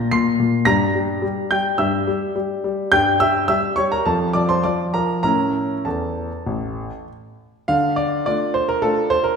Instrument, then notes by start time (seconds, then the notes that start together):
grand piano
Already playing: A#2 A#6
0.11 A#2 C6 C7
0.40 A#2
0.65 G2 G3 A#5 A#6
0.95 G3
1.22 G3
1.51 G3 G5 G6
1.78 G2 G3 E5 E6
2.07 G3
2.36 G3
2.64 G3
2.92 G2 G3 G5 G6
3.20 G3 E5 E6
3.48 G3 E5 E6
3.76 G3 C#5 C#6
3.92 A#4 A#5
4.06 F2 F3 A4 A5
4.33 F3 D5 D6
4.49 C5 C6
4.64 F3 D5 D6
4.94 F3 A#4 A#5
5.23 A2 C#4 E4 A#4 A#5
5.85 E2 A4 A5
6.47 A1
7.68 D3 F5
7.96 D5
8.26 A3 D4 F4 D5
8.54 C5
8.69 A#4
8.82 A3 D4 F4 A4
9.10 C5
9.24 A#4